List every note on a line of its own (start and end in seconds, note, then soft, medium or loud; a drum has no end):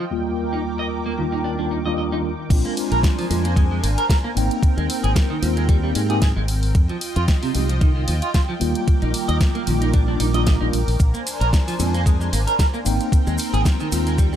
0.00 2.46 G5 medium
0.11 1.14 D#2 medium
0.11 2.48 D#3 medium
0.11 1.15 G3 medium
0.11 1.15 A#3 medium
0.11 1.15 F4 loud
0.11 2.48 A#4 medium
0.11 2.48 D6 medium
0.53 0.59 D#4 medium
0.79 0.85 D#5 medium
1.06 1.12 A#3 medium
1.18 1.55 D#2 medium
1.18 1.22 D#3 medium
1.18 1.56 G3 medium
1.18 1.56 A#3 medium
1.18 1.56 F4 medium
1.32 1.38 D#4 medium
1.44 1.52 D4 medium
1.59 1.82 D#2 medium
1.59 1.82 G3 medium
1.59 1.82 A#3 medium
1.59 1.65 D4 medium
1.59 1.82 D4 medium
1.59 1.82 F4 medium
1.71 1.75 D#4 medium
1.85 2.08 D#2 medium
1.85 2.08 G3 medium
1.85 2.09 A#3 medium
1.85 2.09 D4 medium
1.85 2.09 F4 loud
1.85 1.91 D#5 medium
1.98 2.02 D#5 medium
2.12 2.29 D#2 medium
2.12 2.29 G3 medium
2.12 2.29 A#3 medium
2.12 2.29 D4 medium
2.12 2.16 D#4 medium
2.12 2.29 F4 medium
2.50 2.62 A#1 loud
2.50 3.25 G#3 loud
2.50 3.25 C4 medium
2.50 4.35 D4 medium
2.50 3.26 D4 medium
2.50 3.26 F4 loud
2.50 6.71 A#4 medium
2.50 4.35 C5 medium
2.50 4.35 G#5 medium
2.50 kick loud
2.50 closed hi-hat medium
2.50 crash loud
2.50 ride medium
2.65 2.71 A#3 medium
2.65 closed hi-hat soft
2.77 open hi-hat loud
2.77 ride medium
2.92 3.01 A#1 loud
2.92 2.98 A#4 loud
2.92 closed hi-hat medium
3.03 kick loud
3.03 snare loud
3.03 closed hi-hat medium
3.03 ride medium
3.18 3.24 F3 loud
3.18 open hi-hat medium
3.30 3.79 F2 medium
3.30 3.35 A#2 medium
3.30 3.42 G#3 medium
3.30 3.42 C4 medium
3.30 3.42 D4 medium
3.30 3.43 F4 medium
3.30 open hi-hat loud
3.30 ride medium
3.44 3.51 A#3 medium
3.44 closed hi-hat medium
3.56 3.64 G#3 medium
3.56 kick loud
3.56 closed hi-hat medium
3.56 ride medium
3.71 3.77 G#3 medium
3.83 3.95 G#1 loud
3.83 3.88 A#3 medium
3.83 open hi-hat loud
3.83 ride medium
3.98 4.04 A#4 loud
3.98 closed hi-hat medium
4.10 4.14 A#4 medium
4.10 kick loud
4.10 snare loud
4.10 closed hi-hat medium
4.10 ride medium
4.24 4.28 A#3 loud
4.35 4.48 G#1 medium
4.35 5.39 A#3 loud
4.35 5.39 C4 medium
4.35 6.73 C4 medium
4.35 5.40 D#4 medium
4.35 6.73 G5 medium
4.35 5.40 G5 loud
4.35 open hi-hat loud
4.35 ride medium
4.51 closed hi-hat medium
4.63 muted fingered electric bass stroke soft
4.63 kick loud
4.63 closed hi-hat medium
4.63 ride medium
4.77 4.87 D#2 medium
4.77 4.83 G#3 medium
4.77 closed hi-hat soft
4.90 open hi-hat loud
4.90 ride medium
5.04 5.13 G#1 loud
5.04 5.10 G#4 loud
5.04 closed hi-hat medium
5.16 kick loud
5.16 snare loud
5.16 closed hi-hat medium
5.16 ride medium
5.30 5.36 D#3 loud
5.42 5.92 D#2 medium
5.42 5.47 G#2 medium
5.42 5.80 A#3 medium
5.42 5.80 C4 medium
5.42 5.80 D#4 medium
5.42 5.80 F4 medium
5.42 open hi-hat loud
5.42 ride medium
5.57 5.63 G#3 medium
5.57 closed hi-hat medium
5.69 5.76 G3 medium
5.69 kick loud
5.69 closed hi-hat medium
5.69 ride medium
5.83 5.90 G3 medium
5.83 6.06 A#3 medium
5.83 6.06 C4 medium
5.83 6.07 D#4 medium
5.83 6.07 G4 medium
5.95 6.32 G#2 medium
5.95 6.00 G#3 medium
5.95 open hi-hat loud
5.95 ride medium
6.09 6.20 A#3 medium
6.09 6.20 C4 medium
6.09 6.20 D#4 medium
6.09 6.20 G4 loud
6.09 6.16 G#4 loud
6.09 closed hi-hat medium
6.22 6.26 G#4 medium
6.22 kick loud
6.22 snare loud
6.22 closed hi-hat medium
6.22 ride medium
6.36 6.71 G#1 medium
6.36 6.40 G#3 loud
6.48 open hi-hat loud
6.48 ride medium
6.63 open hi-hat medium
6.75 6.87 F2 loud
6.75 8.59 F4 medium
6.75 8.59 D#5 medium
6.75 10.96 G5 medium
6.75 kick loud
6.75 closed hi-hat medium
6.75 ride medium
6.89 6.96 F3 medium
6.89 closed hi-hat soft
7.01 open hi-hat loud
7.01 ride medium
7.16 7.26 F2 loud
7.16 7.22 F4 loud
7.16 closed hi-hat medium
7.28 kick loud
7.28 snare loud
7.28 closed hi-hat medium
7.28 ride medium
7.42 7.49 C3 loud
7.42 open hi-hat medium
7.54 8.04 C2 medium
7.54 7.59 F2 medium
7.54 7.67 G#3 medium
7.54 7.67 C4 medium
7.54 7.67 D#4 medium
7.54 7.67 G4 medium
7.54 open hi-hat loud
7.54 ride medium
7.69 7.75 F3 medium
7.69 closed hi-hat medium
7.81 7.89 D#3 medium
7.81 kick loud
7.81 closed hi-hat medium
7.81 ride medium
7.96 8.02 D#3 medium
8.08 8.20 D#2 loud
8.08 8.12 F3 medium
8.08 open hi-hat loud
8.08 ride medium
8.22 8.28 F4 loud
8.22 closed hi-hat medium
8.34 8.39 F4 medium
8.34 kick loud
8.34 snare loud
8.34 closed hi-hat medium
8.34 ride medium
8.49 8.53 F3 loud
8.60 8.73 D#2 medium
8.60 10.98 D#3 medium
8.60 9.64 G3 loud
8.60 9.64 A#3 medium
8.60 9.65 F4 loud
8.60 12.82 A#4 medium
8.60 10.98 D6 medium
8.60 open hi-hat loud
8.60 ride medium
8.75 closed hi-hat medium
8.88 muted fingered electric bass stroke soft
8.88 kick loud
8.88 closed hi-hat medium
8.88 ride medium
9.02 9.12 A#1 medium
9.02 9.08 D#4 medium
9.02 closed hi-hat soft
9.14 open hi-hat loud
9.14 ride medium
9.28 9.38 D#2 loud
9.28 9.35 D#5 loud
9.28 closed hi-hat soft
9.41 kick loud
9.41 snare loud
9.41 closed hi-hat medium
9.41 ride medium
9.55 9.61 A#3 loud
9.55 closed hi-hat soft
9.67 10.17 A#1 medium
9.67 9.72 D#3 medium
9.67 10.05 G3 medium
9.67 10.05 A#3 medium
9.67 10.05 F4 medium
9.67 open hi-hat loud
9.67 ride medium
9.81 9.88 D#4 medium
9.81 closed hi-hat soft
9.93 10.01 D4 medium
9.93 kick loud
9.93 closed hi-hat medium
9.93 ride medium
10.07 10.31 G3 medium
10.07 10.31 A#3 medium
10.07 10.14 D4 medium
10.07 10.31 D4 medium
10.07 10.32 F4 medium
10.20 10.57 A#1 medium
10.20 10.24 D#4 medium
10.20 open hi-hat loud
10.20 ride medium
10.34 10.57 G3 loud
10.34 10.58 A#3 medium
10.34 10.58 D4 medium
10.34 10.58 F4 loud
10.34 10.41 D#5 loud
10.34 closed hi-hat medium
10.46 10.51 D#5 medium
10.46 kick loud
10.46 snare loud
10.46 closed hi-hat medium
10.46 ride medium
10.61 10.71 A#1 medium
10.61 10.78 G3 medium
10.61 10.78 A#3 medium
10.61 10.78 D4 medium
10.61 10.65 D#4 loud
10.61 10.79 F4 loud
10.73 10.85 A#1 medium
10.73 open hi-hat loud
10.73 ride medium
10.88 10.97 A#1 medium
10.88 open hi-hat medium
10.99 11.12 A#1 loud
10.99 12.84 D4 medium
10.99 12.84 C5 medium
10.99 12.84 G#5 medium
10.99 kick loud
10.99 closed hi-hat medium
10.99 ride medium
10.99 maracas soft
11.14 11.20 A#3 medium
11.14 closed hi-hat soft
11.14 maracas soft
11.27 open hi-hat loud
11.27 ride medium
11.27 maracas medium
11.40 11.51 A#1 loud
11.40 11.47 A#4 loud
11.40 closed hi-hat soft
11.40 maracas soft
11.53 kick loud
11.53 snare loud
11.53 closed hi-hat medium
11.53 ride medium
11.53 maracas medium
11.68 11.74 F3 loud
11.68 open hi-hat medium
11.68 maracas soft
11.79 12.29 F2 medium
11.79 11.84 A#2 medium
11.79 11.91 G#3 medium
11.79 11.92 C4 medium
11.79 11.92 D4 medium
11.79 11.92 F4 medium
11.79 open hi-hat loud
11.79 ride medium
11.79 maracas medium
11.94 12.00 A#3 medium
11.94 closed hi-hat medium
11.94 maracas soft
12.06 12.14 G#3 medium
12.06 kick loud
12.06 closed hi-hat medium
12.06 ride medium
12.06 maracas medium
12.21 12.27 G#3 medium
12.21 maracas soft
12.33 12.44 G#1 loud
12.33 12.37 A#3 medium
12.33 open hi-hat loud
12.33 ride medium
12.33 maracas loud
12.47 12.53 A#4 loud
12.47 closed hi-hat medium
12.47 maracas soft
12.59 12.64 A#4 medium
12.59 kick loud
12.59 snare loud
12.59 closed hi-hat medium
12.59 ride medium
12.59 maracas medium
12.74 12.77 A#3 loud
12.74 maracas soft
12.85 12.98 G#1 loud
12.85 13.89 A#3 loud
12.85 13.89 C4 medium
12.85 14.36 C4 medium
12.85 13.89 D#4 medium
12.85 14.36 A#4 medium
12.85 14.36 G5 medium
12.85 13.90 G5 loud
12.85 open hi-hat loud
12.85 ride medium
12.85 maracas loud
13.00 closed hi-hat medium
13.00 maracas soft
13.12 muted fingered electric bass stroke soft
13.12 kick loud
13.12 closed hi-hat medium
13.12 ride medium
13.12 maracas medium
13.27 13.37 D#2 loud
13.27 13.33 G#3 medium
13.27 closed hi-hat soft
13.27 maracas soft
13.38 open hi-hat loud
13.38 ride medium
13.38 maracas medium
13.53 13.63 G#1 loud
13.53 13.60 G#4 loud
13.53 closed hi-hat medium
13.53 maracas soft
13.65 kick loud
13.65 snare loud
13.65 closed hi-hat medium
13.65 ride medium
13.65 maracas medium
13.80 13.86 D#3 loud
13.80 maracas soft
13.92 14.36 D#2 medium
13.92 13.97 G#2 medium
13.92 14.29 A#3 medium
13.92 14.29 C4 medium
13.92 14.30 D#4 medium
13.92 14.30 F4 medium
13.92 open hi-hat loud
13.92 ride medium
13.92 maracas loud
14.07 14.13 G#3 medium
14.07 closed hi-hat medium
14.07 maracas soft
14.18 14.26 G3 medium
14.18 kick loud
14.18 closed hi-hat medium
14.18 ride medium
14.18 maracas medium
14.33 14.36 G3 medium
14.33 14.36 A#3 medium
14.33 14.36 C4 medium